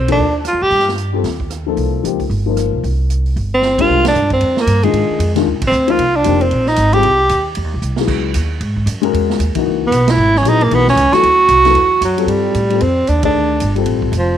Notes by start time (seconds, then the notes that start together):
Already playing: B1 C4
0.08 F3 A#3 D4 D#4 A4, kick, ride
0.18 D#2
0.45 F4, cross-stick, closed hi-hat
0.53 F2
0.62 G2 G4
0.70 G2, open hi-hat
0.79 snare
0.88 snare
0.98 closed hi-hat
1.13 G3 C4 F4 A4
1.24 D#2, snare, open hi-hat
1.40 kick
1.50 cross-stick, closed hi-hat
1.66 F3 A#3 D#4 A4
1.77 C2, open hi-hat
2.03 C#2 F3 A#3 D#4 G4, closed hi-hat
2.20 kick, open hi-hat
2.30 G1, open hi-hat
2.46 F3 A#3 D#4 A#4
2.57 cross-stick, closed hi-hat
2.73 B1
2.84 C2, open hi-hat
3.10 closed hi-hat
3.26 open hi-hat
3.36 G1, open hi-hat
3.54 C4
3.62 snare
3.78 G#3 D4 F4 G4 A#4, kick, ride
3.89 C2
4.05 D4, snare, ride
4.15 G2, hi-hat pedal
4.30 C4, kick, ride
4.41 F2, ride
4.57 A#3, snare
4.67 G2, hi-hat pedal, ride
4.83 D#3 G#3 D4 F4, ride
4.93 G#2, ride
5.09 muted upright bass stroke
5.19 F2, hi-hat pedal, ride
5.35 D#3 G#3 D4 F4, snare, ride
5.46 D#2
5.55 C2
5.61 G#1, kick, ride
5.67 C4
5.71 D2, hi-hat pedal
5.88 F3 A#3 D#4 F4, ride
5.99 C2, ride
6.16 D4
6.24 F1 F3 A#3 D#4 G4, hi-hat pedal, ride
6.41 C4, ride
6.51 A#1, ride
6.66 D#4, snare
6.76 G#1, hi-hat pedal, ride
6.93 G3 C4 F4 G4 G#4, ride
7.03 C2, ride
7.29 D#2, hi-hat pedal, ride
7.55 F2, ride
7.64 D#2
7.74 C2
7.82 C2, hi-hat pedal
7.96 F#3 B3, snare
8.00 E4 G#4
8.07 C#2, kick, crash
8.34 D#2, hi-hat pedal, ride
8.60 G#2, ride
8.76 kick
8.86 F#2, hi-hat pedal, ride
9.02 G#3 C#4 F#4 A#4, ride
9.13 E2, ride
9.30 snare
9.39 D#2, hi-hat pedal, ride
9.55 E3 A#3 D#4 F#4, muted upright bass stroke, kick, ride
9.66 C#2
9.87 B3
9.91 B1, hi-hat pedal, ride
10.08 E4, snare, ride
10.17 G#1
10.35 C#4, snare
10.43 A#1 F#3 B3 E4, hi-hat pedal, ride
10.47 D#4 G#4
10.61 A#3, ride
10.71 B1 E3 A#3 B3 D#4 F#4, ride
10.87 C#4, snare
10.96 C#2, hi-hat pedal, ride
11.12 F#3 B3 E4 F#4 A4, muted upright bass stroke, snare, ride
11.23 D2, ride
11.48 C2, hi-hat pedal, ride
11.65 F#3 B3 E4 A4, snare, ride
11.74 E2, ride
12.01 F#2 F#3, hi-hat pedal, ride
12.17 G3 C4 F4 A4, ride
12.26 G2 G3, ride
12.54 A2, hi-hat pedal, ride
12.70 G3 C4 F4 A4, ride
12.80 F2 C4, ride
13.07 D#2 D4, hi-hat pedal, ride
13.23 D#3 A3 D4 G#4 D5, kick, ride
13.35 D2
13.60 G1, hi-hat pedal, ride
13.75 G3 C4 F4 A4, ride
13.86 A1, ride
14.02 kick
14.12 F1, hi-hat pedal, ride
14.18 F3